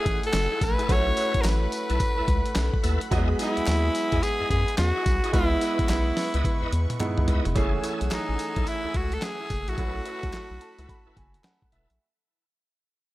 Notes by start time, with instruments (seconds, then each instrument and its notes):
Already playing: grand piano A3 C#4 E4 G#5, analog synth pad A3 F#5 G#5, tenor saxophone G#4
0.06 analog synth bass A1, kick, closed hi-hat
0.23 tenor saxophone A4, closed hi-hat
0.33 analog synth bass F#1, snare, clap, closed hi-hat, tambourine
0.51 tonewheel organ E4 G#4 A4
0.61 analog synth bass A#1, tenor saxophone B4, kick, closed hi-hat, tambourine
0.78 tonewheel organ E4 G#4 A4, closed hi-hat
0.88 analog synth bass B1, grand piano A3 C#4 E4 F#4, tonewheel organ E4 A4 B4, tenor saxophone C#5, analog synth pad B5, kick, closed hi-hat, tambourine
1.17 tonewheel organ E4 A4 B4, closed hi-hat, tambourine
1.34 analog synth bass A1, kick, closed hi-hat
1.41 analog synth bass A1, tenor saxophone A#4, snare, clap, closed hi-hat, tambourine
1.47 tenor saxophone B4
1.72 closed hi-hat, tambourine
1.89 analog synth bass B1, tonewheel organ E4 A4 B4, closed hi-hat
2.00 kick, closed hi-hat, tambourine
2.17 analog synth bass C#2, tonewheel organ E4 A4 B4
2.28 analog synth bass C#2, kick, closed hi-hat
2.46 closed hi-hat
2.55 analog synth bass B1, snare, clap, closed hi-hat, tambourine
2.74 kick
2.83 analog synth bass D#2, tonewheel organ E4 A4 B4, closed hi-hat, tambourine
3.01 closed hi-hat
3.11 analog synth bass E2, grand piano F#3 B3 F#4 D#5, tonewheel organ E4 G#4 D#5, analog synth pad G#4, kick, closed hi-hat, tambourine
3.17 grand piano G#3
3.39 tonewheel organ E4 G#4 D#5, tenor saxophone E4, closed hi-hat, tambourine
3.57 analog synth bass D#2, closed hi-hat
3.66 analog synth bass D#2, snare, clap, closed hi-hat, tambourine
3.95 closed hi-hat, tambourine
4.12 analog synth bass E2, tonewheel organ E4 G#4 D#5, kick, closed hi-hat
4.23 tenor saxophone G#4, closed hi-hat, tambourine
4.40 analog synth bass F#2, tonewheel organ E4 G#4 D#5
4.50 analog synth bass F#2, tenor saxophone G#4, kick, closed hi-hat
4.68 closed hi-hat
4.77 analog synth bass E2, tenor saxophone F#4, snare, clap, closed hi-hat, tambourine
4.95 tonewheel organ E4 G#4 D#5
5.06 analog synth bass C2, kick, closed hi-hat, tambourine
5.23 tonewheel organ E4 G#4 D#5, closed hi-hat
5.33 analog synth bass C#2, grand piano G#3 B3 E4 D#5, tenor saxophone E4, tonewheel organ E4 B4 D#5, analog synth pad B4 C#6, kick, closed hi-hat, tambourine
5.61 tonewheel organ E4 B4 D#5, closed hi-hat, tambourine
5.79 analog synth bass B1, kick, closed hi-hat
5.89 analog synth bass B1, tenor saxophone E4, snare, clap, closed hi-hat, tambourine
6.17 snare, open hi-hat, tambourine
6.34 analog synth bass C#2, tonewheel organ E4 B4 D#5, closed hi-hat
6.45 kick, closed hi-hat, high tom
6.62 analog synth bass E2, tonewheel organ E4 B4 D#5
6.72 analog synth bass E2, closed hi-hat
6.90 closed hi-hat, mid tom
7.00 grand piano G#3 B3 D#4 E4, clap, closed hi-hat, mid tom
7.18 analog synth bass C#2, mid tom
7.28 analog synth bass C#2, tonewheel organ E4 B4 D#5, closed hi-hat, floor tom
7.45 analog synth bass F1, closed hi-hat, floor tom
7.55 analog synth bass F#1, grand piano E3 A3 C#4 G#4, analog synth pad A3 F#5 G#5 E6, tonewheel organ E4 G#4 A4, kick, closed hi-hat, tambourine
7.83 tonewheel organ E4 G#4 A4, closed hi-hat, tambourine
8.01 analog synth bass B1, closed hi-hat
8.11 analog synth bass A1, tenor saxophone D#4, snare, clap, closed hi-hat, tambourine
8.29 analog synth bass A1
8.39 closed hi-hat, tambourine
8.56 analog synth bass B1, tonewheel organ E4 G#4 A4, kick, closed hi-hat
8.67 tenor saxophone E4, closed hi-hat, tambourine
8.84 analog synth bass C#2, tonewheel organ E4 G#4 A4
8.94 analog synth bass C#2, tenor saxophone F#4, kick, closed hi-hat
9.12 tenor saxophone A4, closed hi-hat
9.22 tenor saxophone G#4, snare, clap, closed hi-hat, tambourine
9.40 tonewheel organ E4 G#4 A4
9.50 analog synth bass F#1, kick, closed hi-hat, tambourine
9.68 analog synth bass A#1, tonewheel organ E4 G#4 A4, tenor saxophone F#4, closed hi-hat
9.77 analog synth bass B1, grand piano A3 C#4 E4 F#4, tonewheel organ E4 A4 B4, analog synth pad A4 B5, kick, closed hi-hat
10.06 tonewheel organ E4 A4 B4, closed hi-hat
10.23 analog synth bass C#2, kick, closed hi-hat
10.33 analog synth bass B1, snare, clap, closed hi-hat
10.51 analog synth bass B1
10.61 grand piano A5, closed hi-hat
10.79 analog synth bass C#2, tonewheel organ E4 A4 B4, closed hi-hat
10.89 grand piano B5, kick, closed hi-hat
11.06 analog synth bass F#1, tonewheel organ E4 A4 B4
11.17 analog synth bass F#1, grand piano G#5, kick, closed hi-hat
11.34 closed hi-hat
11.44 grand piano F#5, snare, clap, closed hi-hat
11.62 kick
11.72 analog synth bass E1, tonewheel organ E4 A4 B4, grand piano E5, closed hi-hat
11.90 analog synth bass A#1, closed hi-hat